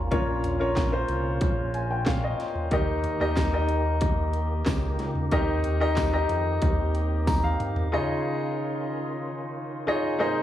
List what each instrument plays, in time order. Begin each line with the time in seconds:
Already playing: analog synth bass G#1, tonewheel organ A#3 C#4 F4, grand piano C#4 F4 A#4 C#5
0.11 analog synth bass A#1, grand piano A#2 C#4 F4 A#4 C#5, kick, closed hi-hat
0.44 closed hi-hat, floor tom
0.59 grand piano C#4 F4 A#4 C#5
0.76 kick, snare, clap, closed hi-hat
0.92 grand piano C#4 F4 A#4 C5
1.08 analog synth bass C2, closed hi-hat
1.41 analog synth bass A#1, kick, closed hi-hat
1.74 grand piano G#5, closed hi-hat
1.91 grand piano G5
2.06 grand piano F5, kick, snare, clap, closed hi-hat
2.24 grand piano D#5
2.40 snare, closed hi-hat
2.55 floor tom
2.71 analog synth bass D#2, tonewheel organ D#3 G4, grand piano D#3 D#4 G4 A#4 D#5, kick, closed hi-hat
3.04 closed hi-hat, floor tom
3.20 analog synth bass D#2, grand piano D#4 G4 A#4 D#5
3.36 analog synth bass D#2, kick, snare, clap, closed hi-hat, tambourine
3.53 grand piano D#4 G4 A#4 D#5
3.69 closed hi-hat
4.01 kick, closed hi-hat
4.33 closed hi-hat
4.66 analog synth bass C#2, kick, snare, clap, closed hi-hat, tambourine
4.99 analog synth bass C#2, snare, closed hi-hat
5.15 floor tom
5.31 analog synth bass D#2, grand piano D#3 D#4 G4 A#4 D#5, tonewheel organ C4, kick, closed hi-hat
5.64 closed hi-hat, floor tom
5.80 grand piano D#4 G4 A#4 D#5
5.96 kick, snare, clap, closed hi-hat, tambourine
6.12 grand piano D#4 G4 A#4 D#5
6.29 analog synth bass F2, closed hi-hat
6.62 analog synth bass D#2, kick, closed hi-hat
6.95 closed hi-hat
7.27 grand piano A#5, kick, snare, closed hi-hat, tambourine
7.44 grand piano F5, high tom
7.60 closed hi-hat, mid tom
7.76 floor tom
7.92 grand piano C#3 D#4 F4 G#4 C#5 D#5, tonewheel organ D#3 C#4 F4
9.87 grand piano D#4 F4 G#4 C#5 D#5
10.19 grand piano G#2 D#4 G#4 A#4 C5 D#5, tonewheel organ C3 A#3 G#4